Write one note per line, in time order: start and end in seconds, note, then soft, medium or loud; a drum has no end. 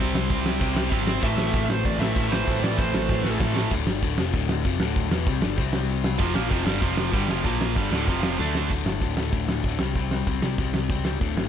0.00 0.11 C2 loud
0.00 0.59 C3 loud
0.00 0.59 G3 loud
0.00 0.61 C4 medium
0.00 0.62 E4 medium
0.00 0.61 G4 loud
0.00 0.64 C5 medium
0.15 0.26 C2 medium
0.15 snare loud
0.30 0.42 C2 medium
0.30 kick loud
0.30 ride loud
0.45 0.57 C2 medium
0.45 snare loud
0.60 0.73 C2 medium
0.60 0.75 C3 medium
0.60 0.75 G3 medium
0.60 0.76 C4 medium
0.60 0.75 E4 medium
0.60 0.73 G4 medium
0.60 kick loud
0.60 ride medium
0.64 0.73 C5 loud
0.74 0.88 C2 loud
0.74 1.07 C3 medium
0.74 1.07 G3 medium
0.74 1.21 C4 medium
0.74 1.22 E4 medium
0.74 1.06 G4 medium
0.74 1.23 C5 medium
0.74 snare loud
0.89 1.15 G#1 medium
0.89 1.05 C3 medium
0.89 1.06 G3 loud
0.89 kick loud
0.89 ride medium
0.93 1.25 C4 medium
1.07 snare loud
1.20 1.35 A1 medium
1.20 1.98 A2 loud
1.20 1.99 E3 loud
1.20 2.00 A3 loud
1.20 1.99 C4 loud
1.20 1.98 E4 loud
1.20 1.98 A4 loud
1.20 1.71 E5 loud
1.20 kick loud
1.20 ride medium
1.26 2.28 A3 loud
1.38 1.50 A1 loud
1.38 snare loud
1.54 1.66 A1 loud
1.54 kick loud
1.54 ride medium
1.69 1.81 A1 medium
1.69 1.84 C5 medium
1.69 snare loud
1.85 1.97 A1 loud
1.85 2.00 D5 loud
1.85 kick loud
1.85 ride medium
1.98 2.12 A1 medium
1.98 2.13 A2 medium
1.98 2.14 E3 medium
1.98 2.16 A3 medium
1.98 2.15 C4 medium
1.98 2.15 E4 medium
1.98 2.18 A4 medium
1.98 2.32 E5 loud
1.98 snare loud
2.15 2.40 A1 loud
2.15 2.45 A2 medium
2.15 2.46 E3 medium
2.15 2.48 A3 medium
2.15 2.46 C4 medium
2.15 2.47 E4 medium
2.15 kick loud
2.15 ride medium
2.19 2.50 A4 medium
2.28 2.46 E3 medium
2.28 2.49 A3 medium
2.28 2.64 C5 medium
2.33 2.44 A2 medium
2.33 snare loud
2.47 2.59 A1 loud
2.47 3.24 A2 medium
2.47 3.24 E3 loud
2.47 3.24 A3 loud
2.47 3.25 C4 loud
2.47 3.24 E4 loud
2.47 3.23 A4 loud
2.47 kick loud
2.47 ride medium
2.63 2.75 A1 medium
2.63 2.79 D5 medium
2.63 snare loud
2.78 2.90 A1 medium
2.78 3.36 C5 medium
2.78 kick loud
2.78 ride medium
2.93 3.05 A1 medium
2.93 snare loud
3.09 3.21 A1 loud
3.09 kick loud
3.09 snare medium
3.24 3.36 A1 medium
3.24 3.39 A2 medium
3.24 3.40 E3 medium
3.24 3.40 A3 medium
3.24 3.40 C4 medium
3.24 3.40 E4 medium
3.24 3.39 A4 medium
3.24 snare medium
3.40 3.64 A1 medium
3.40 3.70 A2 medium
3.40 3.71 E3 medium
3.40 3.71 A3 medium
3.40 3.72 C4 medium
3.40 3.72 E4 medium
3.40 3.72 A4 medium
3.40 kick loud
3.40 snare medium
3.55 3.72 A2 medium
3.55 3.71 E3 medium
3.55 3.70 A3 medium
3.55 snare loud
3.71 3.86 D1 loud
3.71 3.86 D2 loud
3.71 3.87 A2 loud
3.71 3.86 D3 loud
3.71 kick loud
3.71 crash loud
3.86 4.01 G1 loud
3.86 4.01 G2 loud
3.86 4.02 D3 medium
3.86 4.03 G3 loud
3.86 snare loud
4.01 4.17 D1 loud
4.01 4.17 D2 medium
4.01 4.17 A2 medium
4.01 4.18 D3 loud
4.01 kick loud
4.01 ride medium
4.18 4.32 F1 medium
4.18 4.33 F2 medium
4.18 4.33 C3 loud
4.18 4.34 F3 loud
4.18 snare loud
4.33 4.62 D1 loud
4.33 4.64 D2 medium
4.33 4.64 A2 loud
4.33 4.65 D3 loud
4.33 kick loud
4.33 ride medium
4.49 snare loud
4.64 4.79 F1 loud
4.64 4.79 F2 medium
4.64 4.80 C3 loud
4.64 4.80 F3 loud
4.64 kick loud
4.64 ride medium
4.80 5.09 D1 loud
4.80 5.11 D2 medium
4.80 5.11 A2 loud
4.80 5.11 D3 loud
4.80 snare loud
4.96 kick loud
4.96 ride medium
5.11 5.26 E1 loud
5.11 5.26 E2 loud
5.11 5.26 B2 medium
5.11 5.27 E3 loud
5.11 snare loud
5.26 5.41 C2 loud
5.26 5.42 C3 medium
5.26 5.42 G3 loud
5.26 5.43 C4 medium
5.26 kick loud
5.26 ride medium
5.42 5.56 G1 medium
5.42 5.57 G2 loud
5.42 5.57 D3 loud
5.42 5.57 G3 loud
5.42 snare loud
5.57 6.16 C2 loud
5.57 6.19 C3 medium
5.57 6.19 G3 loud
5.57 6.20 C4 loud
5.57 kick loud
5.57 ride medium
5.73 snare loud
5.89 ride medium
6.04 snare loud
6.20 6.34 F1 loud
6.20 6.35 F2 loud
6.20 6.35 C3 loud
6.20 6.34 F3 loud
6.20 kick loud
6.20 ride medium
6.35 6.50 A#1 loud
6.35 6.50 A#2 loud
6.35 6.50 F3 loud
6.35 6.51 A#3 loud
6.35 snare loud
6.50 6.66 F1 loud
6.50 6.66 F2 medium
6.50 6.66 C3 medium
6.50 6.66 F3 loud
6.50 kick loud
6.50 ride medium
6.67 6.81 G1 medium
6.67 6.82 G2 loud
6.67 6.82 D3 loud
6.67 6.83 G3 loud
6.67 snare loud
6.82 7.11 F1 medium
6.82 7.13 F2 medium
6.82 7.13 C3 loud
6.82 7.13 F3 loud
6.82 kick loud
6.82 ride medium
6.97 snare loud
7.13 7.27 G1 medium
7.13 7.29 G2 medium
7.13 7.29 D3 medium
7.13 7.29 G3 loud
7.13 kick loud
7.13 ride medium
7.28 7.43 F1 loud
7.28 7.45 F2 medium
7.28 7.45 C3 loud
7.28 7.45 F3 loud
7.28 snare loud
7.44 7.74 A#1 loud
7.44 7.76 A#2 loud
7.44 7.76 F3 loud
7.44 7.76 A#3 loud
7.44 kick loud
7.44 ride medium
7.61 snare loud
7.76 7.91 G1 loud
7.76 7.91 G2 loud
7.76 7.92 D3 loud
7.76 7.92 G3 medium
7.76 kick loud
7.76 ride medium
7.92 8.06 D1 medium
7.92 8.07 D2 loud
7.92 8.08 A2 loud
7.92 8.08 D3 loud
7.92 snare loud
8.08 8.37 F1 loud
8.08 8.39 F2 medium
8.08 8.39 C3 loud
8.08 8.39 F3 loud
8.08 kick loud
8.08 ride medium
8.23 snare loud
8.38 8.67 D2 loud
8.38 8.70 D3 loud
8.38 8.71 A3 loud
8.38 8.71 D4 loud
8.38 snare medium
8.55 snare loud
8.70 8.82 D1 medium
8.70 9.01 D2 medium
8.70 9.02 A2 medium
8.70 9.02 D3 loud
8.70 kick loud
8.70 crash medium
8.86 8.98 G1 medium
8.86 snare loud
9.01 9.13 D1 medium
9.01 9.17 D2 medium
9.01 9.17 A2 medium
9.01 9.16 D3 medium
9.01 kick loud
9.01 open hi-hat medium
9.17 9.29 D1 medium
9.17 9.31 D2 medium
9.17 9.32 A2 loud
9.17 9.33 D3 medium
9.17 snare loud
9.33 9.45 D1 medium
9.33 9.64 D2 medium
9.33 9.64 A2 medium
9.33 9.65 D3 loud
9.33 kick loud
9.33 open hi-hat medium
9.48 9.60 D1 medium
9.48 snare loud
9.63 9.76 D1 medium
9.63 9.79 D2 medium
9.63 9.80 A2 medium
9.63 9.80 D3 medium
9.63 kick loud
9.63 open hi-hat medium
9.79 9.92 C2 loud
9.79 9.96 C3 medium
9.79 9.95 G3 medium
9.79 9.95 C4 loud
9.79 snare loud
9.95 10.20 C2 medium
9.95 10.27 C3 medium
9.95 10.27 G3 loud
9.95 10.26 C4 loud
9.95 kick loud
9.95 open hi-hat medium
10.11 snare loud
10.27 10.39 C2 medium
10.27 10.41 C3 medium
10.27 10.41 G3 medium
10.27 10.42 C4 medium
10.27 kick loud
10.27 open hi-hat medium
10.42 10.55 C2 medium
10.42 10.59 C3 medium
10.42 10.58 G3 medium
10.42 10.58 C4 medium
10.42 snare loud
10.58 10.70 C2 medium
10.58 10.90 C3 medium
10.58 10.90 G3 loud
10.58 10.89 C4 medium
10.58 kick loud
10.58 open hi-hat medium
10.74 10.87 C2 medium
10.74 snare loud
10.89 11.14 C#2 medium
10.89 11.03 C3 medium
10.89 11.05 G3 medium
10.89 11.05 C4 loud
10.89 kick loud
10.89 open hi-hat medium
11.05 11.20 C3 medium
11.05 11.21 G3 medium
11.05 11.21 C4 medium
11.05 snare loud
11.20 11.34 D1 medium
11.20 11.49 D2 loud
11.20 11.49 A2 loud
11.20 11.49 D3 loud
11.20 kick loud
11.20 open hi-hat medium
11.37 11.49 G1 medium
11.37 snare loud